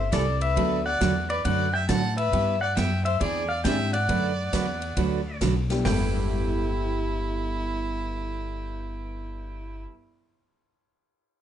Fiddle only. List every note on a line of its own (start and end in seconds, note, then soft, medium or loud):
0.13 0.40 A4 medium
0.42 0.83 B4 medium
0.85 1.26 D5 medium
1.30 1.44 B4 medium
1.46 1.72 D5 medium
1.74 1.88 E5 medium
1.90 2.16 F#5 medium
2.18 2.59 B4 medium
2.61 2.76 D5 medium
2.77 3.04 E5 medium
3.05 3.20 C5 medium
3.21 3.48 G#4 medium
3.49 3.64 D5 medium
3.65 3.92 E5 medium
3.93 5.37 D5 medium
5.85 9.85 E4 medium